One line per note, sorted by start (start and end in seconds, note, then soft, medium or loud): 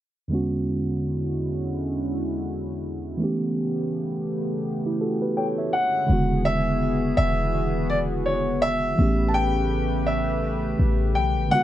0.28 3.15 E2 medium
0.28 3.15 D3 medium
0.28 3.17 D3 medium
0.28 3.16 G#3 medium
0.28 3.17 G#3 medium
0.28 3.17 B3 medium
0.28 3.17 C#4 medium
0.28 3.17 E4 medium
0.28 3.17 F#4 medium
0.33 3.17 C#4 medium
0.33 3.18 F#4 medium
3.17 5.70 C#3 medium
3.17 5.68 E3 medium
3.17 5.68 A3 medium
3.17 5.70 A3 medium
3.17 5.70 B3 medium
3.17 5.69 B3 medium
3.17 5.70 G4 medium
3.22 5.70 C#4 medium
3.22 4.64 G4 medium
4.86 5.00 E4 medium
4.86 5.00 G4 medium
5.01 5.21 F#4 medium
5.01 5.21 A4 medium
5.22 5.37 G4 medium
5.22 5.36 B4 medium
5.37 5.57 A4 medium
5.37 5.57 C#5 medium
5.37 5.45 G5 medium
5.58 5.93 C#5 medium
5.58 5.92 E5 medium
5.73 6.09 D3 medium
5.73 6.09 G#3 medium
5.73 6.09 C#4 medium
5.73 6.09 E4 medium
5.73 6.08 F#4 medium
5.73 6.47 F#5 loud
6.07 7.14 E1 loud
6.07 8.93 D3 medium
6.07 8.95 E3 medium
6.07 8.94 G#3 medium
6.07 8.95 B3 medium
6.07 8.95 F#4 medium
6.07 8.95 G#4 medium
6.11 8.95 C#3 medium
6.11 8.96 F#4 medium
6.45 7.13 E5 loud
7.17 8.95 E1 loud
7.17 7.86 E5 loud
7.90 7.98 D5 loud
8.26 8.63 C#5 medium
8.62 9.30 E5 loud
8.96 10.75 A1 loud
8.96 11.49 C#3 medium
8.96 11.46 E3 medium
8.96 11.47 A3 medium
8.96 11.49 A3 medium
8.96 11.48 B3 medium
8.96 11.49 G4 medium
8.96 11.49 B4 medium
9.01 11.48 C#4 medium
9.01 11.49 G4 medium
9.28 9.34 A5 medium
9.34 10.09 G5 loud
10.07 11.18 E5 medium
10.79 11.17 A1 loud
11.15 11.38 B1 loud
11.15 11.52 G5 medium
11.37 11.51 A1 loud
11.49 11.63 D3 medium
11.49 11.63 E3 medium
11.49 11.63 G#3 medium
11.49 11.63 B3 medium
11.49 11.63 F#4 medium
11.49 11.63 B4 medium
11.49 11.63 F#5 loud
11.53 11.63 C#3 medium
11.53 11.63 F#4 medium